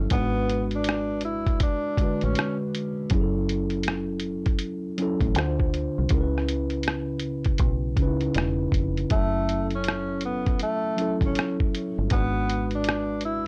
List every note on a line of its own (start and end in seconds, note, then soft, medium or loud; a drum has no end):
0.00 0.12 F#3 medium
0.00 0.12 C#4 medium
0.00 0.13 E4 medium
0.00 0.13 A4 medium
0.10 1.57 G#1 loud
0.10 1.28 G#3 medium
0.10 0.70 B3 medium
0.10 1.29 D4 medium
0.10 1.30 F#4 medium
0.10 kick loud
0.10 closed hi-hat medium
0.15 1.30 B4 medium
0.49 closed hi-hat medium
0.71 closed hi-hat soft
0.75 1.21 D4 medium
0.84 closed hi-hat medium
0.89 cross-stick loud
1.21 1.64 E4 medium
1.21 closed hi-hat medium
1.47 kick medium
1.47 closed hi-hat soft
1.60 2.26 D4 medium
1.60 kick loud
1.60 closed hi-hat medium
1.97 2.90 D3 medium
1.97 2.89 G#3 medium
1.97 kick medium
1.97 closed hi-hat medium
2.02 2.91 F#4 medium
2.02 2.92 B4 medium
2.21 2.34 A1 medium
2.21 2.57 C#4 medium
2.21 closed hi-hat soft
2.35 cross-stick loud
2.35 closed hi-hat medium
2.75 closed hi-hat medium
3.10 4.57 F#1 loud
3.10 4.28 F#3 medium
3.10 4.29 C#4 medium
3.10 4.29 E4 medium
3.10 kick loud
3.10 closed hi-hat medium
3.15 3.21 G#4 medium
3.21 4.33 A4 medium
3.49 closed hi-hat medium
3.70 closed hi-hat soft
3.83 closed hi-hat medium
3.88 cross-stick loud
4.20 closed hi-hat medium
4.46 kick medium
4.46 closed hi-hat soft
4.59 closed hi-hat medium
4.98 5.35 F#3 medium
4.98 5.36 C#4 medium
4.98 5.37 E4 medium
4.98 closed hi-hat medium
5.02 5.38 A4 medium
5.21 5.36 A1 medium
5.21 kick medium
5.21 closed hi-hat soft
5.34 5.88 D2 loud
5.34 6.00 D3 medium
5.34 6.01 D4 medium
5.34 6.01 F4 medium
5.34 closed hi-hat medium
5.39 6.02 C5 loud
5.39 cross-stick loud
5.60 kick medium
5.74 closed hi-hat medium
5.98 6.09 C2 medium
6.09 7.57 C#2 loud
6.09 7.27 C#3 medium
6.09 7.28 C#4 medium
6.09 7.29 E4 medium
6.09 kick loud
6.09 closed hi-hat medium
6.14 6.21 A#4 medium
6.21 7.33 B4 medium
6.38 cross-stick soft
6.49 closed hi-hat medium
6.70 closed hi-hat soft
6.83 closed hi-hat medium
6.88 cross-stick loud
7.20 closed hi-hat medium
7.45 kick medium
7.45 closed hi-hat soft
7.58 7.97 B1 medium
7.58 kick loud
7.58 closed hi-hat medium
7.97 8.29 C#2 medium
7.97 8.89 C#3 medium
7.97 8.90 C#4 medium
7.97 kick loud
7.97 closed hi-hat medium
8.01 8.08 D#4 medium
8.01 8.91 B4 medium
8.08 8.94 E4 medium
8.21 closed hi-hat soft
8.35 8.67 E1 loud
8.35 cross-stick loud
8.35 closed hi-hat medium
8.72 9.04 F1 medium
8.72 kick medium
8.72 closed hi-hat medium
8.97 closed hi-hat soft
9.10 10.57 F#1 loud
9.10 10.29 F#3 medium
9.10 9.70 A3 loud
9.10 10.29 C#4 medium
9.10 kick loud
9.10 closed hi-hat medium
9.15 10.30 E4 medium
9.15 10.31 A4 medium
9.49 closed hi-hat medium
9.71 closed hi-hat soft
9.75 10.21 C#4 medium
9.84 closed hi-hat medium
9.88 cross-stick loud
10.21 closed hi-hat medium
10.25 10.58 B3 medium
10.46 kick medium
10.46 closed hi-hat soft
10.60 11.20 A3 medium
10.60 closed hi-hat medium
10.97 11.88 F#3 medium
10.97 11.89 C#4 medium
10.97 11.90 E4 medium
10.97 closed hi-hat medium
11.02 11.91 A4 medium
11.21 11.32 G#1 medium
11.21 kick medium
11.21 closed hi-hat soft
11.26 11.58 C#4 medium
11.35 cross-stick loud
11.35 closed hi-hat medium
11.60 kick medium
11.75 closed hi-hat medium
11.98 12.09 G1 medium
12.10 13.47 G#1 loud
12.10 13.28 G#3 medium
12.10 12.70 B3 loud
12.10 13.29 D4 medium
12.10 13.30 F#4 medium
12.10 kick loud
12.10 closed hi-hat medium
12.15 13.30 B4 medium
12.50 closed hi-hat medium
12.71 closed hi-hat soft
12.75 13.21 D4 medium
12.84 closed hi-hat medium
12.89 cross-stick loud
13.21 closed hi-hat medium
13.25 13.47 E4 medium